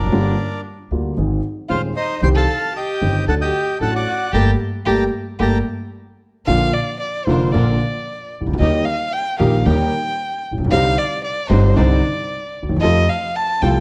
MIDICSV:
0, 0, Header, 1, 6, 480
1, 0, Start_track
1, 0, Key_signature, -2, "minor"
1, 0, Tempo, 530035
1, 107, Time_signature, 4, 2, 24, 8
1, 5865, Key_signature, -2, "major"
1, 12499, End_track
2, 0, Start_track
2, 0, Title_t, "Bandoneon"
2, 0, Program_c, 0, 23
2, 0, Note_on_c, 0, 70, 53
2, 0, Note_on_c, 0, 74, 59
2, 552, Note_off_c, 0, 70, 0
2, 554, Note_off_c, 0, 74, 0
2, 1535, Note_on_c, 0, 77, 73
2, 1539, Note_on_c, 0, 72, 56
2, 1642, Note_off_c, 0, 77, 0
2, 1645, Note_off_c, 0, 72, 0
2, 1780, Note_on_c, 0, 72, 59
2, 1781, Note_on_c, 0, 75, 78
2, 2000, Note_off_c, 0, 72, 0
2, 2000, Note_off_c, 0, 75, 0
2, 2020, Note_on_c, 0, 79, 71
2, 2024, Note_on_c, 0, 84, 87
2, 2072, Note_off_c, 0, 79, 0
2, 2076, Note_off_c, 0, 84, 0
2, 2147, Note_on_c, 0, 81, 77
2, 2148, Note_on_c, 0, 77, 57
2, 2475, Note_off_c, 0, 77, 0
2, 2503, Note_on_c, 0, 79, 72
2, 2504, Note_on_c, 0, 75, 48
2, 2510, Note_off_c, 0, 81, 0
2, 2943, Note_off_c, 0, 75, 0
2, 2943, Note_off_c, 0, 79, 0
2, 2974, Note_on_c, 0, 81, 78
2, 2981, Note_on_c, 0, 78, 58
2, 3027, Note_off_c, 0, 81, 0
2, 3032, Note_off_c, 0, 78, 0
2, 3088, Note_on_c, 0, 75, 54
2, 3092, Note_on_c, 0, 79, 73
2, 3422, Note_off_c, 0, 75, 0
2, 3424, Note_off_c, 0, 79, 0
2, 3460, Note_on_c, 0, 78, 61
2, 3460, Note_on_c, 0, 81, 70
2, 3566, Note_off_c, 0, 78, 0
2, 3566, Note_off_c, 0, 81, 0
2, 3582, Note_on_c, 0, 78, 76
2, 3587, Note_on_c, 0, 74, 57
2, 3909, Note_off_c, 0, 78, 0
2, 3911, Note_off_c, 0, 74, 0
2, 3929, Note_on_c, 0, 81, 69
2, 3932, Note_on_c, 0, 79, 73
2, 3932, Note_on_c, 0, 82, 69
2, 4081, Note_off_c, 0, 81, 0
2, 4083, Note_off_c, 0, 79, 0
2, 4083, Note_off_c, 0, 82, 0
2, 4412, Note_on_c, 0, 82, 61
2, 4413, Note_on_c, 0, 81, 67
2, 4420, Note_on_c, 0, 79, 67
2, 4564, Note_off_c, 0, 82, 0
2, 4565, Note_off_c, 0, 81, 0
2, 4569, Note_off_c, 0, 79, 0
2, 4909, Note_on_c, 0, 82, 65
2, 4910, Note_on_c, 0, 81, 65
2, 4912, Note_on_c, 0, 79, 65
2, 5055, Note_off_c, 0, 82, 0
2, 5056, Note_off_c, 0, 81, 0
2, 5058, Note_off_c, 0, 79, 0
2, 12499, End_track
3, 0, Start_track
3, 0, Title_t, "Violin"
3, 0, Program_c, 1, 40
3, 0, Note_on_c, 1, 62, 49
3, 550, Note_off_c, 1, 62, 0
3, 1528, Note_on_c, 1, 65, 59
3, 1637, Note_off_c, 1, 65, 0
3, 1774, Note_on_c, 1, 63, 58
3, 1996, Note_off_c, 1, 63, 0
3, 2008, Note_on_c, 1, 72, 87
3, 2063, Note_off_c, 1, 72, 0
3, 2125, Note_on_c, 1, 69, 67
3, 2463, Note_off_c, 1, 69, 0
3, 2490, Note_on_c, 1, 67, 64
3, 2936, Note_off_c, 1, 67, 0
3, 2966, Note_on_c, 1, 69, 63
3, 3020, Note_off_c, 1, 69, 0
3, 3094, Note_on_c, 1, 67, 66
3, 3425, Note_off_c, 1, 67, 0
3, 3447, Note_on_c, 1, 69, 62
3, 3558, Note_off_c, 1, 69, 0
3, 3562, Note_on_c, 1, 66, 61
3, 3898, Note_off_c, 1, 66, 0
3, 3904, Note_on_c, 1, 67, 85
3, 4066, Note_off_c, 1, 67, 0
3, 4397, Note_on_c, 1, 67, 74
3, 4555, Note_off_c, 1, 67, 0
3, 4882, Note_on_c, 1, 67, 62
3, 5039, Note_off_c, 1, 67, 0
3, 5854, Note_on_c, 1, 77, 101
3, 6096, Note_on_c, 1, 74, 84
3, 6109, Note_off_c, 1, 77, 0
3, 6331, Note_off_c, 1, 74, 0
3, 6337, Note_on_c, 1, 74, 67
3, 6567, Note_on_c, 1, 72, 63
3, 6580, Note_off_c, 1, 74, 0
3, 6805, Note_on_c, 1, 74, 61
3, 6818, Note_off_c, 1, 72, 0
3, 7541, Note_off_c, 1, 74, 0
3, 7784, Note_on_c, 1, 75, 85
3, 8015, Note_on_c, 1, 77, 84
3, 8029, Note_off_c, 1, 75, 0
3, 8264, Note_on_c, 1, 79, 80
3, 8278, Note_off_c, 1, 77, 0
3, 8497, Note_off_c, 1, 79, 0
3, 8503, Note_on_c, 1, 77, 69
3, 8748, Note_on_c, 1, 79, 77
3, 8762, Note_off_c, 1, 77, 0
3, 9466, Note_off_c, 1, 79, 0
3, 9702, Note_on_c, 1, 77, 105
3, 9945, Note_on_c, 1, 74, 91
3, 9958, Note_off_c, 1, 77, 0
3, 10173, Note_off_c, 1, 74, 0
3, 10179, Note_on_c, 1, 74, 76
3, 10411, Note_on_c, 1, 72, 69
3, 10424, Note_off_c, 1, 74, 0
3, 10655, Note_on_c, 1, 74, 72
3, 10668, Note_off_c, 1, 72, 0
3, 11377, Note_off_c, 1, 74, 0
3, 11606, Note_on_c, 1, 75, 100
3, 11855, Note_on_c, 1, 77, 84
3, 11868, Note_off_c, 1, 75, 0
3, 12096, Note_on_c, 1, 81, 89
3, 12109, Note_off_c, 1, 77, 0
3, 12334, Note_on_c, 1, 79, 76
3, 12348, Note_off_c, 1, 81, 0
3, 12499, Note_off_c, 1, 79, 0
3, 12499, End_track
4, 0, Start_track
4, 0, Title_t, "String section"
4, 0, Program_c, 2, 48
4, 5863, Note_on_c, 2, 62, 57
4, 5866, Note_on_c, 2, 65, 49
4, 5867, Note_on_c, 2, 70, 59
4, 6068, Note_off_c, 2, 62, 0
4, 6069, Note_off_c, 2, 65, 0
4, 6070, Note_off_c, 2, 70, 0
4, 6593, Note_on_c, 2, 62, 71
4, 6594, Note_on_c, 2, 65, 62
4, 6594, Note_on_c, 2, 70, 77
4, 6794, Note_off_c, 2, 62, 0
4, 6795, Note_off_c, 2, 65, 0
4, 6795, Note_off_c, 2, 70, 0
4, 6835, Note_on_c, 2, 62, 63
4, 6836, Note_on_c, 2, 65, 61
4, 6838, Note_on_c, 2, 70, 79
4, 7036, Note_off_c, 2, 62, 0
4, 7036, Note_off_c, 2, 65, 0
4, 7037, Note_off_c, 2, 70, 0
4, 7796, Note_on_c, 2, 63, 63
4, 7801, Note_on_c, 2, 67, 61
4, 7803, Note_on_c, 2, 70, 70
4, 7996, Note_off_c, 2, 63, 0
4, 7999, Note_off_c, 2, 67, 0
4, 7999, Note_off_c, 2, 70, 0
4, 8506, Note_on_c, 2, 63, 68
4, 8511, Note_on_c, 2, 67, 67
4, 8511, Note_on_c, 2, 70, 72
4, 8710, Note_off_c, 2, 63, 0
4, 8712, Note_off_c, 2, 67, 0
4, 8712, Note_off_c, 2, 70, 0
4, 8749, Note_on_c, 2, 63, 65
4, 8751, Note_on_c, 2, 67, 67
4, 8753, Note_on_c, 2, 70, 79
4, 8951, Note_off_c, 2, 63, 0
4, 8952, Note_off_c, 2, 67, 0
4, 8953, Note_off_c, 2, 70, 0
4, 9701, Note_on_c, 2, 63, 59
4, 9702, Note_on_c, 2, 62, 60
4, 9704, Note_on_c, 2, 72, 73
4, 9904, Note_off_c, 2, 62, 0
4, 9904, Note_off_c, 2, 63, 0
4, 9905, Note_off_c, 2, 72, 0
4, 10411, Note_on_c, 2, 62, 71
4, 10411, Note_on_c, 2, 63, 71
4, 10412, Note_on_c, 2, 72, 75
4, 10617, Note_off_c, 2, 62, 0
4, 10617, Note_off_c, 2, 63, 0
4, 10618, Note_off_c, 2, 72, 0
4, 10653, Note_on_c, 2, 62, 73
4, 10654, Note_on_c, 2, 63, 68
4, 10658, Note_on_c, 2, 72, 78
4, 10858, Note_off_c, 2, 62, 0
4, 10858, Note_off_c, 2, 63, 0
4, 10861, Note_off_c, 2, 72, 0
4, 11611, Note_on_c, 2, 60, 65
4, 11611, Note_on_c, 2, 69, 73
4, 11612, Note_on_c, 2, 65, 59
4, 11817, Note_off_c, 2, 69, 0
4, 11818, Note_off_c, 2, 60, 0
4, 11818, Note_off_c, 2, 65, 0
4, 12342, Note_on_c, 2, 60, 63
4, 12344, Note_on_c, 2, 65, 63
4, 12344, Note_on_c, 2, 69, 68
4, 12499, Note_off_c, 2, 60, 0
4, 12499, Note_off_c, 2, 65, 0
4, 12499, Note_off_c, 2, 69, 0
4, 12499, End_track
5, 0, Start_track
5, 0, Title_t, "Grand piano"
5, 0, Program_c, 3, 0
5, 58, Note_on_c, 3, 42, 60
5, 111, Note_on_c, 3, 50, 64
5, 112, Note_off_c, 3, 42, 0
5, 115, Note_on_c, 3, 43, 70
5, 116, Note_on_c, 3, 31, 72
5, 117, Note_on_c, 3, 55, 54
5, 117, Note_on_c, 3, 58, 52
5, 118, Note_on_c, 3, 65, 64
5, 309, Note_off_c, 3, 50, 0
5, 311, Note_off_c, 3, 31, 0
5, 311, Note_off_c, 3, 43, 0
5, 312, Note_off_c, 3, 55, 0
5, 312, Note_off_c, 3, 58, 0
5, 312, Note_off_c, 3, 65, 0
5, 831, Note_on_c, 3, 55, 33
5, 832, Note_on_c, 3, 38, 45
5, 833, Note_on_c, 3, 50, 44
5, 833, Note_on_c, 3, 65, 41
5, 834, Note_on_c, 3, 58, 34
5, 1025, Note_off_c, 3, 55, 0
5, 1026, Note_off_c, 3, 38, 0
5, 1026, Note_off_c, 3, 65, 0
5, 1027, Note_off_c, 3, 50, 0
5, 1027, Note_off_c, 3, 58, 0
5, 1064, Note_on_c, 3, 51, 42
5, 1066, Note_on_c, 3, 32, 50
5, 1066, Note_on_c, 3, 56, 40
5, 1067, Note_on_c, 3, 60, 40
5, 1068, Note_on_c, 3, 68, 43
5, 1070, Note_on_c, 3, 44, 50
5, 1261, Note_off_c, 3, 51, 0
5, 1262, Note_off_c, 3, 32, 0
5, 1262, Note_off_c, 3, 56, 0
5, 1262, Note_off_c, 3, 60, 0
5, 1262, Note_off_c, 3, 68, 0
5, 1264, Note_off_c, 3, 44, 0
5, 1537, Note_on_c, 3, 27, 45
5, 1538, Note_on_c, 3, 51, 35
5, 1539, Note_on_c, 3, 39, 42
5, 1539, Note_on_c, 3, 56, 37
5, 1542, Note_on_c, 3, 60, 34
5, 1542, Note_on_c, 3, 68, 40
5, 1736, Note_off_c, 3, 27, 0
5, 1737, Note_off_c, 3, 39, 0
5, 1737, Note_off_c, 3, 51, 0
5, 1738, Note_off_c, 3, 56, 0
5, 1739, Note_off_c, 3, 60, 0
5, 1739, Note_off_c, 3, 68, 0
5, 2016, Note_on_c, 3, 55, 58
5, 2017, Note_on_c, 3, 48, 66
5, 2018, Note_on_c, 3, 51, 58
5, 2019, Note_on_c, 3, 36, 65
5, 2020, Note_on_c, 3, 60, 56
5, 2024, Note_on_c, 3, 67, 64
5, 2216, Note_off_c, 3, 48, 0
5, 2216, Note_off_c, 3, 51, 0
5, 2216, Note_off_c, 3, 55, 0
5, 2217, Note_off_c, 3, 36, 0
5, 2218, Note_off_c, 3, 60, 0
5, 2220, Note_off_c, 3, 67, 0
5, 2732, Note_on_c, 3, 43, 44
5, 2732, Note_on_c, 3, 51, 41
5, 2732, Note_on_c, 3, 55, 34
5, 2735, Note_on_c, 3, 60, 37
5, 2736, Note_on_c, 3, 31, 44
5, 2736, Note_on_c, 3, 67, 44
5, 2932, Note_off_c, 3, 43, 0
5, 2932, Note_off_c, 3, 51, 0
5, 2932, Note_off_c, 3, 55, 0
5, 2934, Note_off_c, 3, 31, 0
5, 2934, Note_off_c, 3, 60, 0
5, 2934, Note_off_c, 3, 67, 0
5, 2969, Note_on_c, 3, 54, 44
5, 2970, Note_on_c, 3, 57, 41
5, 2972, Note_on_c, 3, 69, 46
5, 2973, Note_on_c, 3, 50, 47
5, 2974, Note_on_c, 3, 38, 49
5, 2976, Note_on_c, 3, 62, 39
5, 3170, Note_off_c, 3, 54, 0
5, 3171, Note_off_c, 3, 57, 0
5, 3172, Note_off_c, 3, 50, 0
5, 3172, Note_off_c, 3, 69, 0
5, 3173, Note_off_c, 3, 38, 0
5, 3174, Note_off_c, 3, 62, 0
5, 3446, Note_on_c, 3, 54, 37
5, 3448, Note_on_c, 3, 33, 49
5, 3449, Note_on_c, 3, 57, 34
5, 3449, Note_on_c, 3, 69, 45
5, 3450, Note_on_c, 3, 45, 45
5, 3450, Note_on_c, 3, 62, 33
5, 3647, Note_off_c, 3, 54, 0
5, 3649, Note_off_c, 3, 33, 0
5, 3649, Note_off_c, 3, 45, 0
5, 3649, Note_off_c, 3, 57, 0
5, 3649, Note_off_c, 3, 69, 0
5, 3650, Note_off_c, 3, 62, 0
5, 3929, Note_on_c, 3, 58, 77
5, 3931, Note_on_c, 3, 57, 82
5, 3933, Note_on_c, 3, 55, 81
5, 4081, Note_off_c, 3, 58, 0
5, 4083, Note_off_c, 3, 55, 0
5, 4083, Note_off_c, 3, 57, 0
5, 4407, Note_on_c, 3, 58, 69
5, 4408, Note_on_c, 3, 57, 68
5, 4410, Note_on_c, 3, 55, 70
5, 4561, Note_off_c, 3, 58, 0
5, 4562, Note_off_c, 3, 57, 0
5, 4563, Note_off_c, 3, 55, 0
5, 4889, Note_on_c, 3, 55, 71
5, 4889, Note_on_c, 3, 57, 75
5, 4889, Note_on_c, 3, 58, 77
5, 5043, Note_off_c, 3, 57, 0
5, 5043, Note_off_c, 3, 58, 0
5, 5044, Note_off_c, 3, 55, 0
5, 5862, Note_on_c, 3, 50, 63
5, 5862, Note_on_c, 3, 53, 56
5, 5864, Note_on_c, 3, 34, 72
5, 5864, Note_on_c, 3, 46, 75
5, 5865, Note_on_c, 3, 58, 51
5, 5868, Note_on_c, 3, 65, 75
5, 6067, Note_off_c, 3, 50, 0
5, 6067, Note_off_c, 3, 53, 0
5, 6068, Note_off_c, 3, 34, 0
5, 6068, Note_off_c, 3, 46, 0
5, 6069, Note_off_c, 3, 58, 0
5, 6070, Note_off_c, 3, 65, 0
5, 6584, Note_on_c, 3, 50, 64
5, 6585, Note_on_c, 3, 29, 63
5, 6585, Note_on_c, 3, 41, 66
5, 6585, Note_on_c, 3, 53, 54
5, 6586, Note_on_c, 3, 58, 53
5, 6589, Note_on_c, 3, 65, 65
5, 6789, Note_off_c, 3, 50, 0
5, 6790, Note_off_c, 3, 29, 0
5, 6790, Note_off_c, 3, 41, 0
5, 6790, Note_off_c, 3, 53, 0
5, 6790, Note_off_c, 3, 58, 0
5, 6792, Note_off_c, 3, 65, 0
5, 6822, Note_on_c, 3, 50, 63
5, 6826, Note_on_c, 3, 34, 79
5, 6826, Note_on_c, 3, 53, 55
5, 6827, Note_on_c, 3, 46, 77
5, 6828, Note_on_c, 3, 58, 56
5, 6829, Note_on_c, 3, 65, 75
5, 7029, Note_off_c, 3, 50, 0
5, 7031, Note_off_c, 3, 34, 0
5, 7031, Note_off_c, 3, 53, 0
5, 7032, Note_off_c, 3, 46, 0
5, 7032, Note_off_c, 3, 58, 0
5, 7033, Note_off_c, 3, 65, 0
5, 7614, Note_on_c, 3, 36, 44
5, 7673, Note_on_c, 3, 37, 57
5, 7674, Note_off_c, 3, 36, 0
5, 7734, Note_off_c, 3, 37, 0
5, 7737, Note_on_c, 3, 38, 66
5, 7792, Note_on_c, 3, 55, 55
5, 7794, Note_on_c, 3, 51, 69
5, 7795, Note_on_c, 3, 39, 75
5, 7795, Note_on_c, 3, 67, 73
5, 7796, Note_off_c, 3, 38, 0
5, 7798, Note_on_c, 3, 58, 56
5, 7994, Note_off_c, 3, 55, 0
5, 7995, Note_off_c, 3, 39, 0
5, 7996, Note_off_c, 3, 51, 0
5, 7996, Note_off_c, 3, 67, 0
5, 7997, Note_off_c, 3, 58, 0
5, 8509, Note_on_c, 3, 51, 63
5, 8510, Note_on_c, 3, 58, 50
5, 8511, Note_on_c, 3, 55, 54
5, 8511, Note_on_c, 3, 67, 70
5, 8512, Note_on_c, 3, 34, 70
5, 8513, Note_on_c, 3, 46, 75
5, 8712, Note_off_c, 3, 51, 0
5, 8712, Note_off_c, 3, 58, 0
5, 8712, Note_off_c, 3, 67, 0
5, 8713, Note_off_c, 3, 34, 0
5, 8713, Note_off_c, 3, 46, 0
5, 8713, Note_off_c, 3, 55, 0
5, 8746, Note_on_c, 3, 55, 62
5, 8747, Note_on_c, 3, 51, 76
5, 8748, Note_on_c, 3, 39, 72
5, 8748, Note_on_c, 3, 58, 59
5, 8749, Note_on_c, 3, 67, 72
5, 8949, Note_off_c, 3, 55, 0
5, 8950, Note_off_c, 3, 51, 0
5, 8950, Note_off_c, 3, 58, 0
5, 8951, Note_off_c, 3, 39, 0
5, 8951, Note_off_c, 3, 67, 0
5, 9529, Note_on_c, 3, 33, 39
5, 9588, Note_off_c, 3, 33, 0
5, 9594, Note_on_c, 3, 34, 55
5, 9650, Note_off_c, 3, 34, 0
5, 9655, Note_on_c, 3, 35, 67
5, 9704, Note_on_c, 3, 50, 67
5, 9707, Note_on_c, 3, 48, 81
5, 9707, Note_on_c, 3, 60, 63
5, 9708, Note_on_c, 3, 55, 61
5, 9709, Note_on_c, 3, 36, 83
5, 9709, Note_on_c, 3, 63, 77
5, 9710, Note_off_c, 3, 35, 0
5, 9905, Note_off_c, 3, 50, 0
5, 9906, Note_off_c, 3, 48, 0
5, 9906, Note_off_c, 3, 60, 0
5, 9907, Note_off_c, 3, 36, 0
5, 9907, Note_off_c, 3, 55, 0
5, 9908, Note_off_c, 3, 63, 0
5, 10418, Note_on_c, 3, 50, 67
5, 10421, Note_on_c, 3, 31, 75
5, 10421, Note_on_c, 3, 43, 70
5, 10424, Note_on_c, 3, 55, 57
5, 10424, Note_on_c, 3, 63, 75
5, 10426, Note_on_c, 3, 60, 55
5, 10621, Note_off_c, 3, 50, 0
5, 10622, Note_off_c, 3, 31, 0
5, 10622, Note_off_c, 3, 43, 0
5, 10623, Note_off_c, 3, 55, 0
5, 10624, Note_off_c, 3, 60, 0
5, 10624, Note_off_c, 3, 63, 0
5, 10652, Note_on_c, 3, 50, 75
5, 10655, Note_on_c, 3, 36, 85
5, 10656, Note_on_c, 3, 48, 82
5, 10656, Note_on_c, 3, 55, 65
5, 10657, Note_on_c, 3, 60, 63
5, 10659, Note_on_c, 3, 63, 77
5, 10858, Note_off_c, 3, 50, 0
5, 10859, Note_off_c, 3, 36, 0
5, 10859, Note_off_c, 3, 48, 0
5, 10859, Note_off_c, 3, 55, 0
5, 10860, Note_off_c, 3, 60, 0
5, 10861, Note_off_c, 3, 63, 0
5, 11436, Note_on_c, 3, 38, 41
5, 11495, Note_on_c, 3, 39, 56
5, 11498, Note_off_c, 3, 38, 0
5, 11558, Note_off_c, 3, 39, 0
5, 11561, Note_on_c, 3, 40, 69
5, 11612, Note_on_c, 3, 48, 60
5, 11614, Note_on_c, 3, 57, 59
5, 11615, Note_on_c, 3, 53, 81
5, 11616, Note_on_c, 3, 41, 75
5, 11618, Note_on_c, 3, 65, 73
5, 11621, Note_off_c, 3, 40, 0
5, 11818, Note_off_c, 3, 48, 0
5, 11819, Note_off_c, 3, 57, 0
5, 11820, Note_off_c, 3, 41, 0
5, 11820, Note_off_c, 3, 53, 0
5, 11821, Note_off_c, 3, 65, 0
5, 12337, Note_on_c, 3, 48, 70
5, 12338, Note_on_c, 3, 36, 72
5, 12339, Note_on_c, 3, 65, 69
5, 12340, Note_on_c, 3, 53, 59
5, 12340, Note_on_c, 3, 57, 55
5, 12499, Note_off_c, 3, 36, 0
5, 12499, Note_off_c, 3, 48, 0
5, 12499, Note_off_c, 3, 53, 0
5, 12499, Note_off_c, 3, 57, 0
5, 12499, Note_off_c, 3, 65, 0
5, 12499, End_track
6, 0, Start_track
6, 0, Title_t, "Upright bass"
6, 0, Program_c, 4, 32
6, 54, Note_on_c, 4, 30, 59
6, 102, Note_off_c, 4, 30, 0
6, 108, Note_on_c, 4, 31, 69
6, 307, Note_off_c, 4, 31, 0
6, 822, Note_on_c, 4, 38, 52
6, 1021, Note_off_c, 4, 38, 0
6, 1060, Note_on_c, 4, 32, 50
6, 1259, Note_off_c, 4, 32, 0
6, 1534, Note_on_c, 4, 39, 47
6, 1735, Note_off_c, 4, 39, 0
6, 2007, Note_on_c, 4, 36, 73
6, 2211, Note_off_c, 4, 36, 0
6, 2729, Note_on_c, 4, 31, 49
6, 2931, Note_off_c, 4, 31, 0
6, 2966, Note_on_c, 4, 38, 52
6, 3169, Note_off_c, 4, 38, 0
6, 3441, Note_on_c, 4, 33, 50
6, 3645, Note_off_c, 4, 33, 0
6, 3921, Note_on_c, 4, 31, 75
6, 4102, Note_off_c, 4, 31, 0
6, 4400, Note_on_c, 4, 31, 75
6, 4582, Note_off_c, 4, 31, 0
6, 4887, Note_on_c, 4, 31, 70
6, 5067, Note_off_c, 4, 31, 0
6, 5860, Note_on_c, 4, 34, 72
6, 6066, Note_off_c, 4, 34, 0
6, 6583, Note_on_c, 4, 29, 76
6, 6789, Note_off_c, 4, 29, 0
6, 6828, Note_on_c, 4, 34, 82
6, 7032, Note_off_c, 4, 34, 0
6, 7613, Note_on_c, 4, 36, 39
6, 7658, Note_off_c, 4, 36, 0
6, 7664, Note_on_c, 4, 37, 59
6, 7722, Note_off_c, 4, 37, 0
6, 7728, Note_on_c, 4, 38, 75
6, 7783, Note_off_c, 4, 38, 0
6, 7789, Note_on_c, 4, 39, 76
6, 7992, Note_off_c, 4, 39, 0
6, 8510, Note_on_c, 4, 34, 86
6, 8712, Note_off_c, 4, 34, 0
6, 8746, Note_on_c, 4, 39, 73
6, 8949, Note_off_c, 4, 39, 0
6, 9521, Note_on_c, 4, 33, 43
6, 9574, Note_off_c, 4, 33, 0
6, 9579, Note_on_c, 4, 34, 61
6, 9634, Note_off_c, 4, 34, 0
6, 9640, Note_on_c, 4, 35, 71
6, 9690, Note_off_c, 4, 35, 0
6, 9696, Note_on_c, 4, 36, 81
6, 9901, Note_off_c, 4, 36, 0
6, 10412, Note_on_c, 4, 31, 87
6, 10618, Note_off_c, 4, 31, 0
6, 10658, Note_on_c, 4, 36, 82
6, 10861, Note_off_c, 4, 36, 0
6, 11434, Note_on_c, 4, 38, 41
6, 11486, Note_off_c, 4, 38, 0
6, 11492, Note_on_c, 4, 39, 56
6, 11552, Note_off_c, 4, 39, 0
6, 11557, Note_on_c, 4, 40, 72
6, 11608, Note_off_c, 4, 40, 0
6, 11614, Note_on_c, 4, 41, 84
6, 11819, Note_off_c, 4, 41, 0
6, 12336, Note_on_c, 4, 36, 82
6, 12499, Note_off_c, 4, 36, 0
6, 12499, End_track
0, 0, End_of_file